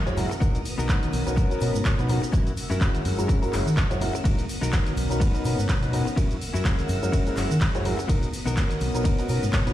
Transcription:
Already playing: F#1 A#4 F#5 E6
0.06 G#3 C#4 E4 F#4 C#5, closed hi-hat, low conga, cabasa
0.16 G#3 C#4 E4 F#4 A#4, muted clean electric guitar stroke, open hi-hat, low conga, shaker
0.30 muted clean electric guitar stroke, cabasa, shaker
0.40 B1 B3 D#4 F#4 A#4 A#5 D#6, kick, closed hi-hat, cabasa, shaker
0.55 closed hi-hat, low conga, cabasa
0.65 open hi-hat, shaker
0.78 B1 B3 D#4 F#4 A#4, cabasa, shaker
0.89 B3 C#4 D#4 F#4 A#4, kick, clap, closed hi-hat, cabasa, shaker
1.03 closed hi-hat, high conga, cabasa
1.13 B1, open hi-hat, shaker
1.26 B1 B3 C#4 D#4 F#4 A#4, closed hi-hat, cabasa, shaker
1.36 B3 D#4 F#4 A#4, kick, closed hi-hat, cabasa, shaker
1.50 B3 C#4 D#4 F#4 A#4, muted fingered electric bass stroke, closed hi-hat, cabasa, shaker
1.60 B2 B3 C#4 D#4 F#4 A#4, open hi-hat, shaker
1.74 G#2, cabasa, shaker
1.85 B2, kick, clap, closed hi-hat, high conga, cabasa, shaker
1.98 B3 C#4 D#4 F#4 B4, closed hi-hat, low conga, cabasa
2.08 B3 C#4 D#4 F#4 A#4, muted clean electric guitar stroke, open hi-hat, low conga, shaker
2.22 muted clean electric guitar stroke, cabasa, shaker
2.32 F#2 C#4 E4 F#4 A#4 F#5 E6, kick, closed hi-hat, cabasa, shaker
2.46 closed hi-hat, low conga, cabasa
2.57 open hi-hat, shaker
2.70 F#2 C#4 E4 F#4 A#4, cabasa, shaker
2.81 G#3 C#4 E4 F#4 A#4, kick, clap, closed hi-hat, cabasa, shaker
2.94 closed hi-hat, high conga, cabasa
3.05 F#2, open hi-hat, shaker
3.18 F#2 G#3 C#4 E4 F#4 A#4, closed hi-hat, cabasa, shaker
3.28 C#4 E4 F#4 A#4, kick, closed hi-hat, cabasa, shaker
3.41 G#3 C#4 E4 F#4 A#4, closed hi-hat, cabasa, shaker
3.52 F#1 G#3 C#4 E4 F#4 A#4, clap, open hi-hat, shaker
3.66 D#3, cabasa, shaker
3.77 F#1, kick, clap, closed hi-hat, high conga, cabasa, shaker
3.90 G#3 C#4 E4 F#4 C#5, closed hi-hat, low conga, cabasa, shaker
4.00 G#3 C#4 E4 F#4 A#4, muted clean electric guitar stroke, open hi-hat, low conga, shaker
4.13 muted clean electric guitar stroke, cabasa, shaker
4.24 B1 B3 D#4 F#4 A#4 A#5 D#6, kick, closed hi-hat, ride, cabasa, shaker
4.39 closed hi-hat, low conga, cabasa
4.49 open hi-hat, shaker
4.61 B1 B3 D#4 F#4 A#4, cabasa, shaker
4.72 B3 C#4 D#4 F#4 A#4, kick, clap, closed hi-hat, ride, cabasa, shaker
4.86 closed hi-hat, high conga, cabasa
4.97 B1, open hi-hat, shaker
5.09 B1 B3 C#4 D#4 F#4 A#4, closed hi-hat, cabasa, shaker
5.20 B3 D#4 F#4 B4, kick, closed hi-hat, ride, cabasa, shaker
5.33 B3 C#4 D#4 F#4 A#4, muted fingered electric bass stroke, closed hi-hat, cabasa, shaker
5.44 B2 B3 C#4 D#4 F#4 A#4, open hi-hat, shaker
5.58 G#2, cabasa, shaker
5.69 B2, kick, clap, closed hi-hat, ride, high conga, cabasa, shaker
5.82 B3 C#4 D#4 F#4 B4, closed hi-hat, low conga, cabasa
5.92 B3 C#4 D#4 F#4 A#4, muted clean electric guitar stroke, open hi-hat, low conga, shaker
6.05 muted clean electric guitar stroke, cabasa, shaker
6.16 F#2 C#4 E4 F#4 A#4 F#5 E6, kick, closed hi-hat, ride, cabasa, shaker
6.31 closed hi-hat, low conga, cabasa
6.41 open hi-hat, shaker
6.54 F#2 C#4 E4 F#4 A#4, cabasa, shaker
6.65 G#3 C#4 E4 F#4 A#4, kick, clap, closed hi-hat, ride, cabasa, shaker
6.79 closed hi-hat, high conga, cabasa
6.89 F#2, open hi-hat, shaker
7.02 F#2 G#3 C#4 E4 F#4 A#4, closed hi-hat, cabasa, shaker
7.12 C#4 E4 F#4 A#4, kick, closed hi-hat, ride, cabasa, shaker
7.26 G#3 C#4 E4 F#4 A#4, closed hi-hat, cabasa, shaker
7.36 F#1 G#3 C#4 E4 F#4 A#4, clap, open hi-hat, shaker
7.51 D#3, cabasa, shaker
7.61 F#1, kick, clap, closed hi-hat, ride, high conga, cabasa, shaker
7.74 G#3 C#4 E4 F#4 C#5, closed hi-hat, low conga, cabasa
7.84 G#3 C#4 E4 F#4 A#4, muted clean electric guitar stroke, open hi-hat, low conga, shaker
7.97 muted clean electric guitar stroke, cabasa, shaker
8.08 B1 B3 D#4 F#4 A#4 A#5 D#6, kick, closed hi-hat, ride, cabasa, shaker
8.22 closed hi-hat, low conga, cabasa
8.33 open hi-hat, shaker
8.46 B1 B3 D#4 F#4 A#4, cabasa, shaker
8.57 B3 C#4 D#4 F#4 A#4, kick, clap, closed hi-hat, ride, cabasa, shaker
8.70 closed hi-hat, high conga, cabasa
8.80 B1, open hi-hat, shaker
8.94 B1 B3 C#4 D#4 F#4 A#4, closed hi-hat, cabasa, shaker
9.04 B3 D#4 F#4 A#4, kick, closed hi-hat, ride, cabasa, shaker
9.18 B3 C#4 D#4 F#4 A#4, muted fingered electric bass stroke, closed hi-hat, cabasa, shaker
9.29 B2 B3 C#4 D#4 F#4 A#4, open hi-hat, shaker
9.42 G#2, cabasa, shaker
9.52 B2, kick, clap, closed hi-hat, ride, high conga, cabasa, shaker
9.66 B3 C#4 D#4 F#4 B4, closed hi-hat, low conga, cabasa

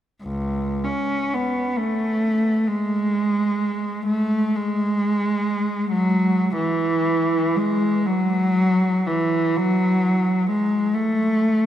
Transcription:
0.24 C#2
0.84 C#4
1.34 B3
1.78 A3
2.68 G#3
4.06 A3
4.56 G#3
5.91 F#3
6.57 E3
7.55 G#3
8.06 F#3
9.07 E3
9.56 F#3
10.50 G#3
10.95 A3

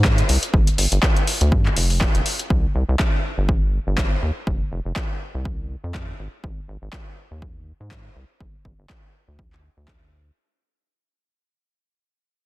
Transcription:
Already playing: G#2
0.04 kick, clap
0.18 closed hi-hat
0.29 C2, open hi-hat
0.43 closed hi-hat
0.54 G1, kick
0.67 closed hi-hat
0.78 G1, open hi-hat
0.92 G1, closed hi-hat
1.03 kick, clap
1.17 closed hi-hat
1.27 open hi-hat
1.41 D2, closed hi-hat
1.52 G2, kick
1.66 clap
1.76 F1, open hi-hat
1.90 open hi-hat
2.01 kick, clap
2.15 F1, closed hi-hat
2.26 open hi-hat
2.39 closed hi-hat
2.50 C2, kick
2.75 C2
2.89 C2
3.00 kick, clap
3.38 G1
3.49 kick
3.87 G1
3.98 kick, clap
4.22 D#2
4.47 F1, kick
4.72 F1
4.85 F1
4.96 kick, clap
5.35 C2
5.45 kick
5.84 F2
5.95 kick, clap
6.19 G#1
6.44 G#1, kick
6.68 G#1
6.82 G#1
6.93 kick, clap
7.31 D#2
7.42 kick
7.80 G#2
7.91 kick, clap
8.16 C2
8.40 G1, kick
8.65 G1, kick
8.79 G1
8.90 kick, clap
9.28 D2
9.39 kick
9.53 clap
9.77 D2
9.88 kick, clap

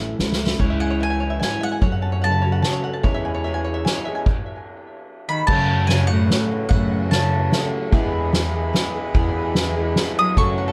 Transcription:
Already playing: A1 A2 E3 A3 C#4 E4 E5
0.00 C#4
0.19 C#2 E3 A3 C#4 E4, snare
0.32 snare
0.42 E4
0.46 snare
0.59 C#2 C#3 E3 G#3 C#4 E4 C#5, kick, crash
0.70 E5
0.80 C#4 F#5 G#5
0.90 C#5
1.00 E3 G#3 C#4 E4 E5 G#5, ride
1.10 G#5
1.20 G#3 C#4 E4 C#5
1.30 E5
1.40 G#2 E3 G#3 C#4 E4 G#5, snare, ride
1.50 C#5
1.61 G#3 E5 F#5
1.72 G#5
1.81 F#2 C#3 F#3 A3 C#4 F#4 C#5, kick, ride
1.92 F#5
2.02 C#4 A5
2.12 C#5
2.22 C#3 F#3 A3 C#4 F#5 A5, ride
2.26 F#4
2.32 A5
2.42 F#4 C#5
2.52 F#5
2.62 C#3 F#3 A3 C#4 A5, snare, ride
2.67 F#4
2.73 C#5
2.84 A3 F#5
2.93 A5
3.03 E2 E3 G#3 C#4 E4 G#4 C#5, kick, ride
3.14 E5
3.25 G#5
3.35 C#5
3.44 E3 G#3 C#4 G#4 E5, ride
3.54 G#5
3.64 C#5
3.74 E5
3.85 E3 G#3 C#4 G#4 G#5, snare, ride
3.95 C#5
4.05 C#4 G#4 E5
4.10 G#3
4.15 G#5
4.26 kick, crash
5.29 D#3 B5
5.47 F#1 F#2 C#3 F#3 A3 C#4 F#4 A4 C#5 A5, kick, crash
5.87 C#3 F#3 A3 G#5, snare, ride
5.92 C#4 F#4
6.07 A2 C#4 F#4 F#5
6.11 F#3 A3
6.30 F#3 A3 C#4 F#4, snare, ride
6.69 F#1 F#2 A2 C#3 F#3 A3 F#5, kick, ride
6.73 C#4 F#4
6.92 ride
7.10 C#3 F#3 A3 C#4 A5, snare, ride
7.14 F#4
7.30 F#3 A3 C#4 F#4
7.52 F#3 A3 C#4 F#4 A4 E5, snare, ride
7.91 E2 B2 E3 G#3 B3 E4 G#4 B4 E5 B5, kick, ride
8.33 E3 G#3 B3 G#4, snare, ride
8.53 E3 G#3 B3 G#4
8.73 E3 G#3 B3 G#4, snare, ride
8.94 E3 G#3 B3 G#4
9.14 E2 B2 E3 G#3 B3 G#4, kick, ride
9.35 ride
9.55 E3 G#3 B3 G#4, snare, ride
9.76 E3 G#3 B3 G#4
9.96 E3 G#3 B3 G#4, snare, ride
10.17 F#3 D#6
10.36 F#1 F#2 C#3 F#3 A3 C#4 F#4 A4 C#5 C#6, kick, ride
10.58 F#5
10.68 A4

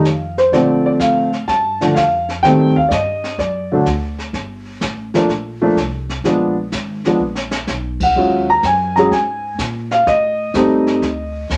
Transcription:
Already playing: F2 F5
0.05 snare, hi-hat pedal
0.38 C5, snare
0.52 A#2 D3 F3 A3 C4 D5, brush sweep, kick, snare
0.86 D5, muted upright bass stroke
0.99 A2 F5, kick, snare, hi-hat pedal
1.33 snare
1.48 G2 A5, brush sweep, kick, snare
1.81 D3 F3 A3 D4, snare
1.95 F2 F5, kick, snare, hi-hat pedal
2.29 snare
2.43 A2 D#3 G3 A3 C4 G5, brush sweep, kick, snare
2.59 G2
2.76 D#2 F5
2.89 G2 D5 D#5, kick, snare, hi-hat pedal
3.24 snare
3.38 F#2 D5, brush sweep, kick, snare
3.72 D3 F#3 A3 D4
3.86 D2, kick, snare, hi-hat pedal
4.18 snare
4.33 G1, brush sweep, kick, snare
4.81 A1, kick, snare, hi-hat pedal
5.14 F3 A3 A#3 D4, snare
5.29 A#1, brush sweep, kick, snare
5.61 F3 A3 A#3 D4
5.76 C2, kick, snare, hi-hat pedal
6.09 snare
6.24 A#1 F3 G#3 B3 D4, brush sweep, kick, snare
6.72 G#1, kick, snare, hi-hat pedal
7.04 F3 G#3 B3 D4, snare
7.20 A#1
7.35 snare
7.51 snare
7.67 B1, snare, hi-hat pedal
8.00 F#5, kick, ride
8.15 D#2 F#3 G#3 C#4 F4, brush sweep
8.50 A#5
8.63 F#2 G#5, kick, snare, hi-hat pedal
8.96 F#3 G#3 C#4 G#4 A#5, snare
9.11 G#2 G#5, brush sweep, kick, snare
9.58 A#2, kick, snare, hi-hat pedal
9.91 F5, snare
10.06 A2 D#5, brush sweep, kick, snare
10.54 G2 G3 A3 C4 D#4, kick, snare, hi-hat pedal
10.87 snare
11.02 D2, brush sweep, kick, snare
11.50 D#2, kick, snare, hi-hat pedal

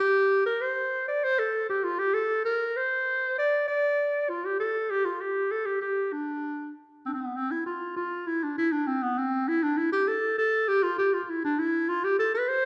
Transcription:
0.00 G4
0.46 A#4
0.61 C5
1.08 D5
1.24 C5
1.39 A4
1.69 G4
1.84 F4
1.99 G4
2.14 A4
2.45 A#4
2.77 C5
3.38 D5
3.68 D5
4.29 F4
4.45 G4
4.60 A4
4.91 G4
5.05 F4
5.21 G4
5.51 A4
5.66 G4
5.81 G4
6.13 D4
7.06 C4 D4
7.13 C4
7.21 B3
7.36 C4
7.51 E4
7.66 F4
7.96 F4
8.27 E4
8.43 D4
8.58 E4
8.72 D4
8.87 C4
9.02 B3
9.18 C4
9.48 E4
9.63 D4
9.78 E4
9.92 G4
10.07 A4
10.38 A4
10.68 G4
10.83 F4
10.98 G4
11.14 F4
11.24 F4
11.30 E4
11.44 D4
11.59 E4
11.89 F4
12.04 G4
12.19 A4
12.34 B4
12.48 C5

